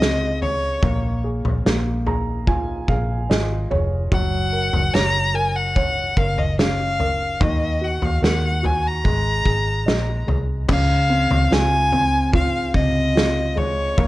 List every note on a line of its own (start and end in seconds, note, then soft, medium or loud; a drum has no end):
0.00 0.79 C#2 medium
0.00 0.79 C3 medium
0.00 0.79 C#3 medium
0.00 0.80 G#3 medium
0.00 0.38 C4 medium
0.00 0.79 F4 medium
0.00 0.85 G#4 medium
0.00 0.41 D#5 loud
0.00 snare loud
0.42 1.20 C#5 medium
0.42 floor tom medium
0.83 1.41 A#1 loud
0.83 1.64 A#3 medium
0.83 kick loud
0.83 floor tom loud
1.24 2.05 G#4 medium
1.45 1.64 A#1 loud
1.45 floor tom medium
1.65 2.85 A#1 loud
1.65 3.26 A#3 medium
1.65 snare loud
2.07 2.87 G#4 medium
2.07 2.45 A#5 medium
2.07 floor tom medium
2.47 3.28 F4 medium
2.47 2.86 G#5 medium
2.47 kick medium
2.47 floor tom medium
2.88 3.26 A#1 medium
2.88 3.69 G#4 medium
2.88 3.27 F5 medium
2.88 kick medium
3.30 3.68 G#1 loud
3.30 4.09 F4 medium
3.30 3.68 D#5 medium
3.30 snare loud
3.71 4.09 F1 loud
3.71 4.11 G#4 soft
3.71 4.09 C#5 medium
3.71 floor tom medium
4.12 4.69 F#1 loud
4.12 7.37 F#3 medium
4.12 4.96 F#5 loud
4.12 kick loud
4.12 floor tom loud
4.53 5.33 A#4 medium
4.73 4.93 F#1 loud
4.73 floor tom medium
4.94 6.13 F#1 loud
4.94 5.74 C#5 medium
4.94 5.37 A#5 loud
4.94 snare loud
5.34 6.16 A#4 medium
5.34 5.57 G#5 loud
5.56 6.19 F#5 loud
5.76 7.36 C#5 medium
5.76 kick medium
5.76 floor tom medium
6.17 7.36 F#1 medium
6.17 6.98 A#4 medium
6.17 6.40 F5 medium
6.17 kick medium
6.38 6.58 D#5 medium
6.38 floor tom medium
6.58 7.38 C#4 medium
6.58 7.44 F5 loud
6.58 snare loud
6.99 7.39 A#4 medium
6.99 floor tom medium
7.40 7.98 D#2 loud
7.40 9.01 D#3 medium
7.40 7.85 D#5 loud
7.40 kick loud
7.40 floor tom loud
7.81 8.61 F#4 medium
7.81 8.06 F#5 medium
8.02 8.21 D#2 medium
8.02 8.24 F5 medium
8.02 floor tom medium
8.22 9.01 D#2 loud
8.22 9.02 A#4 medium
8.22 8.67 F#5 medium
8.22 snare loud
8.63 9.03 F#4 medium
8.63 8.88 G#5 medium
8.63 floor tom medium
8.87 10.29 A#5 loud
9.04 9.43 G#1 loud
9.04 10.65 G#3 medium
9.04 kick medium
9.04 floor tom medium
9.46 9.84 G#1 medium
9.46 10.26 G#4 medium
9.46 kick medium
9.86 10.25 A#1 medium
9.86 10.66 D#5 medium
9.86 snare loud
10.27 10.66 C2 loud
10.27 10.68 G#4 soft
10.27 floor tom medium
10.68 11.27 C#2 loud
10.68 13.94 C#3 medium
10.68 11.55 F5 loud
10.68 kick loud
10.68 floor tom loud
10.68 crash loud
11.10 11.91 C4 medium
11.30 11.50 C#2 loud
11.30 floor tom medium
11.51 12.71 C#2 loud
11.51 12.32 F4 medium
11.51 12.34 G#5 loud
11.51 snare loud
11.92 13.53 C4 medium
11.92 floor tom medium
12.33 13.14 F4 medium
12.33 12.73 F5 loud
12.33 kick medium
12.33 floor tom medium
12.74 13.94 C#2 medium
12.74 13.94 C3 medium
12.74 13.59 D#5 loud
12.74 kick loud
13.15 13.95 F4 medium
13.15 snare loud
13.56 13.96 G#3 medium
13.56 14.07 C#5 loud
13.56 floor tom medium
13.98 14.07 A#1 loud
13.98 14.07 A#3 medium
13.98 kick loud
13.98 floor tom loud